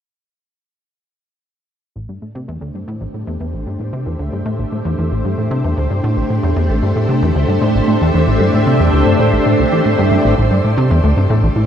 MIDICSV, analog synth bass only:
0, 0, Header, 1, 2, 480
1, 0, Start_track
1, 0, Key_signature, 0, "minor"
1, 0, Tempo, 526316
1, 1783, Time_signature, 4, 2, 24, 8
1, 10637, End_track
2, 0, Start_track
2, 0, Title_t, "Analog synth bass"
2, 0, Program_c, 0, 38
2, 1784, Note_on_c, 0, 33, 78
2, 1897, Note_off_c, 0, 33, 0
2, 1904, Note_on_c, 0, 43, 70
2, 1993, Note_off_c, 0, 43, 0
2, 2024, Note_on_c, 0, 45, 67
2, 2137, Note_off_c, 0, 45, 0
2, 2143, Note_on_c, 0, 48, 93
2, 2257, Note_off_c, 0, 48, 0
2, 2262, Note_on_c, 0, 40, 99
2, 2352, Note_off_c, 0, 40, 0
2, 2380, Note_on_c, 0, 38, 90
2, 2471, Note_off_c, 0, 38, 0
2, 2503, Note_on_c, 0, 43, 66
2, 2593, Note_off_c, 0, 43, 0
2, 2623, Note_on_c, 0, 45, 93
2, 2737, Note_off_c, 0, 45, 0
2, 2743, Note_on_c, 0, 33, 79
2, 2797, Note_off_c, 0, 33, 0
2, 2863, Note_on_c, 0, 45, 70
2, 2953, Note_off_c, 0, 45, 0
2, 2982, Note_on_c, 0, 40, 93
2, 3072, Note_off_c, 0, 40, 0
2, 3103, Note_on_c, 0, 40, 92
2, 3217, Note_off_c, 0, 40, 0
2, 3224, Note_on_c, 0, 33, 73
2, 3337, Note_off_c, 0, 33, 0
2, 3344, Note_on_c, 0, 43, 72
2, 3433, Note_off_c, 0, 43, 0
2, 3462, Note_on_c, 0, 45, 63
2, 3576, Note_off_c, 0, 45, 0
2, 3582, Note_on_c, 0, 48, 97
2, 3697, Note_off_c, 0, 48, 0
2, 3703, Note_on_c, 0, 40, 86
2, 3792, Note_off_c, 0, 40, 0
2, 3822, Note_on_c, 0, 38, 88
2, 3912, Note_off_c, 0, 38, 0
2, 3944, Note_on_c, 0, 43, 71
2, 4033, Note_off_c, 0, 43, 0
2, 4063, Note_on_c, 0, 45, 98
2, 4177, Note_off_c, 0, 45, 0
2, 4183, Note_on_c, 0, 33, 79
2, 4237, Note_off_c, 0, 33, 0
2, 4304, Note_on_c, 0, 45, 73
2, 4393, Note_off_c, 0, 45, 0
2, 4422, Note_on_c, 0, 40, 92
2, 4512, Note_off_c, 0, 40, 0
2, 4545, Note_on_c, 0, 40, 91
2, 4658, Note_off_c, 0, 40, 0
2, 4663, Note_on_c, 0, 33, 77
2, 4777, Note_off_c, 0, 33, 0
2, 4786, Note_on_c, 0, 43, 73
2, 4874, Note_off_c, 0, 43, 0
2, 4904, Note_on_c, 0, 45, 71
2, 5018, Note_off_c, 0, 45, 0
2, 5023, Note_on_c, 0, 48, 97
2, 5137, Note_off_c, 0, 48, 0
2, 5144, Note_on_c, 0, 40, 91
2, 5233, Note_off_c, 0, 40, 0
2, 5265, Note_on_c, 0, 38, 94
2, 5353, Note_off_c, 0, 38, 0
2, 5386, Note_on_c, 0, 43, 65
2, 5474, Note_off_c, 0, 43, 0
2, 5505, Note_on_c, 0, 45, 100
2, 5618, Note_off_c, 0, 45, 0
2, 5625, Note_on_c, 0, 33, 72
2, 5678, Note_off_c, 0, 33, 0
2, 5745, Note_on_c, 0, 45, 75
2, 5834, Note_off_c, 0, 45, 0
2, 5865, Note_on_c, 0, 40, 95
2, 5954, Note_off_c, 0, 40, 0
2, 5985, Note_on_c, 0, 40, 96
2, 6098, Note_off_c, 0, 40, 0
2, 6103, Note_on_c, 0, 33, 81
2, 6217, Note_off_c, 0, 33, 0
2, 6224, Note_on_c, 0, 43, 76
2, 6313, Note_off_c, 0, 43, 0
2, 6345, Note_on_c, 0, 45, 74
2, 6458, Note_off_c, 0, 45, 0
2, 6463, Note_on_c, 0, 48, 95
2, 6577, Note_off_c, 0, 48, 0
2, 6585, Note_on_c, 0, 40, 93
2, 6674, Note_off_c, 0, 40, 0
2, 6703, Note_on_c, 0, 38, 93
2, 6793, Note_off_c, 0, 38, 0
2, 6824, Note_on_c, 0, 43, 72
2, 6913, Note_off_c, 0, 43, 0
2, 6944, Note_on_c, 0, 45, 94
2, 7058, Note_off_c, 0, 45, 0
2, 7066, Note_on_c, 0, 33, 75
2, 7119, Note_off_c, 0, 33, 0
2, 7185, Note_on_c, 0, 45, 73
2, 7274, Note_off_c, 0, 45, 0
2, 7306, Note_on_c, 0, 40, 92
2, 7394, Note_off_c, 0, 40, 0
2, 7424, Note_on_c, 0, 40, 97
2, 7538, Note_off_c, 0, 40, 0
2, 7544, Note_on_c, 0, 33, 73
2, 7657, Note_off_c, 0, 33, 0
2, 7662, Note_on_c, 0, 43, 71
2, 7752, Note_off_c, 0, 43, 0
2, 7784, Note_on_c, 0, 45, 71
2, 7897, Note_off_c, 0, 45, 0
2, 7904, Note_on_c, 0, 48, 97
2, 8018, Note_off_c, 0, 48, 0
2, 8023, Note_on_c, 0, 40, 105
2, 8113, Note_off_c, 0, 40, 0
2, 8142, Note_on_c, 0, 38, 93
2, 8232, Note_off_c, 0, 38, 0
2, 8265, Note_on_c, 0, 43, 69
2, 8353, Note_off_c, 0, 43, 0
2, 8383, Note_on_c, 0, 45, 94
2, 8497, Note_off_c, 0, 45, 0
2, 8504, Note_on_c, 0, 33, 78
2, 8557, Note_off_c, 0, 33, 0
2, 8625, Note_on_c, 0, 45, 75
2, 8714, Note_off_c, 0, 45, 0
2, 8746, Note_on_c, 0, 36, 73
2, 8798, Note_off_c, 0, 36, 0
2, 8866, Note_on_c, 0, 52, 73
2, 8954, Note_off_c, 0, 52, 0
2, 8984, Note_on_c, 0, 45, 75
2, 9073, Note_off_c, 0, 45, 0
2, 9105, Note_on_c, 0, 43, 95
2, 9218, Note_off_c, 0, 43, 0
2, 9223, Note_on_c, 0, 43, 95
2, 9277, Note_off_c, 0, 43, 0
2, 9346, Note_on_c, 0, 33, 78
2, 9434, Note_off_c, 0, 33, 0
2, 9465, Note_on_c, 0, 33, 79
2, 9578, Note_off_c, 0, 33, 0
2, 9584, Note_on_c, 0, 43, 72
2, 9673, Note_off_c, 0, 43, 0
2, 9706, Note_on_c, 0, 45, 71
2, 9818, Note_off_c, 0, 45, 0
2, 9826, Note_on_c, 0, 48, 100
2, 9938, Note_off_c, 0, 48, 0
2, 9946, Note_on_c, 0, 40, 98
2, 10034, Note_off_c, 0, 40, 0
2, 10063, Note_on_c, 0, 38, 98
2, 10153, Note_off_c, 0, 38, 0
2, 10184, Note_on_c, 0, 43, 70
2, 10273, Note_off_c, 0, 43, 0
2, 10303, Note_on_c, 0, 45, 96
2, 10417, Note_off_c, 0, 45, 0
2, 10423, Note_on_c, 0, 33, 78
2, 10477, Note_off_c, 0, 33, 0
2, 10540, Note_on_c, 0, 45, 71
2, 10631, Note_off_c, 0, 45, 0
2, 10637, End_track
0, 0, End_of_file